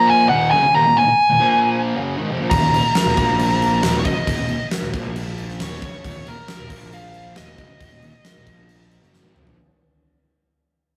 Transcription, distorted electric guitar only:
Already playing: A#2 F3 A#3
0.29 D#2 A#2 D#3
0.52 F#2 C#3
0.64 muted distorted electric guitar stroke
0.74 D#2 A#2
0.86 D#2 A#2
0.97 D#2 A#2
1.08 muted distorted electric guitar stroke
1.30 D#2 A#2
1.40 A#2 F3 A#3
1.95 F#2 C#3 F#3
2.18 G#2 D#3
2.29 F2 C3
2.40 A#2 F3
2.51 D#2 A#2
2.62 D#2 A#2
2.73 D#2 A#2
2.84 muted distorted electric guitar stroke
3.06 D#2 A#2
3.17 A#2 F3 A#3
3.83 D#2 A#2 D#3
4.06 F#2 C#3
4.17 muted distorted electric guitar stroke
4.27 D#2 A#2
4.39 D#2 A#2
4.50 D#2 A#2
4.61 muted distorted electric guitar stroke
4.83 D#2 A#2
4.94 A#2 F3 A#3
5.60 D#2 A#2 D#3
5.82 F#2 C#3
5.93 muted distorted electric guitar stroke
6.03 D#2 A#2
6.14 D#2 A#2
6.25 D#2 A#2
6.36 muted distorted electric guitar stroke
6.58 D#2 A#2
6.69 A#2 F3 A#3
7.36 D#2 A#2 D#3
7.58 F#2 C#3
7.69 muted distorted electric guitar stroke
7.79 D#2 A#2
7.91 D#2 A#2
8.02 D#2 A#2
8.13 muted distorted electric guitar stroke
8.35 D#2 A#2
8.46 A#2 F3 A#3
9.01 F#2 C#3 F#3
9.24 G#2 D#3
9.34 F2 C3
9.45 A#2 F3

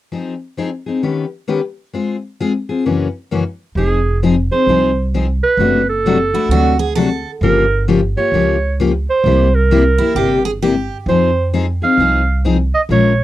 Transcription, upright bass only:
3.75 F1
4.67 C2
5.57 F#1
6.49 D2
7.41 G1
8.32 C#2
9.24 C2
10.15 G1
11.06 F2
11.98 C2
12.89 A#1

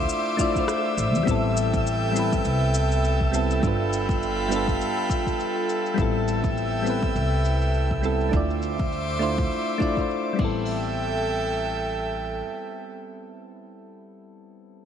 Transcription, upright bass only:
0.98 A1
1.14 E2
1.27 A1
2.45 C2
3.63 G1
5.98 A1
7.16 C2
8.33 D2
10.39 A1

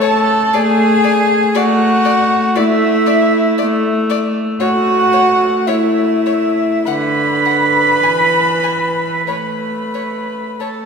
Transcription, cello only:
0.02 A4
0.54 G#4
1.56 F#4
2.57 E4
4.60 F#4
5.67 E4
6.86 B4
9.29 B4
10.60 A4

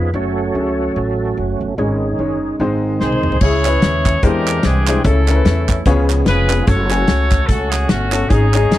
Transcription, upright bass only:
Already playing: F2
0.14 F#1
0.55 C#2
0.96 A1
1.37 F#1
1.61 G1
1.78 G#1
2.19 F#1
2.60 G#1
3.01 C2
3.41 C#2
3.83 D#2
4.23 E2
4.64 C2
5.04 C#2
5.45 E2
5.86 C#2
6.26 F1
6.68 F#1
7.09 C#2
7.49 C#2
7.90 G1
8.30 G#1
8.71 F#1

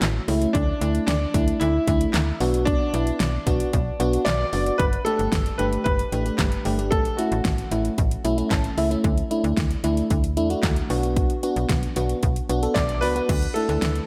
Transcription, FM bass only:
0.02 A1
0.28 C#2
0.55 D2
0.81 D2
1.08 D2
1.34 D2
1.61 D2
1.88 D2
2.14 D2
2.40 B1
2.94 B1
3.20 B1
3.47 B1
3.74 B1
4.00 B1
4.26 B1
4.53 F#1
4.79 G1
5.19 G1
5.32 G1
5.59 G1
5.86 G1
6.12 A1
6.39 G1
6.65 G1
6.92 A1
7.32 A1
7.45 A1
7.71 A1
7.98 A1
8.25 B1
8.51 A1
8.78 C#2
9.04 D2
9.44 D2
9.57 D2
9.84 D2
10.11 D2
10.37 E2
10.63 D2
10.90 B1
11.56 B1
11.70 B1
11.96 B1
12.23 B1
12.49 B1
12.76 B1
13.02 C#2
13.29 D2
13.69 D2
13.82 D2

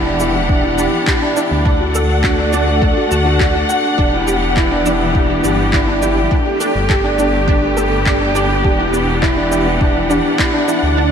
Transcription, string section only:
Already playing: E3 B3 D4 G4 F#5
1.66 A3 F#5
3.98 E3 B3 G4
6.31 A3 B3
8.64 E3 D4 F#5
10.98 A3

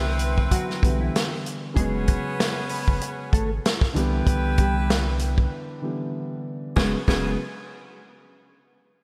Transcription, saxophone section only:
Already playing: C4 E4 B4
1.76 B3 C#4 G#4
3.96 E4 G4 B4
6.77 C#3 B3 G#4
7.08 C#3 B3 G#4

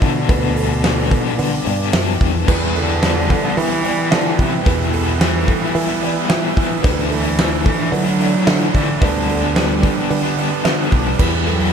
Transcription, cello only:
0.01 B2
2.76 D3
3.57 E3
4.11 D3
4.39 C3
4.65 B2
5.19 E3
7.10 E3
7.65 E3
7.93 F#3
8.75 E3
9.02 D3
9.57 G3
11.46 F#3

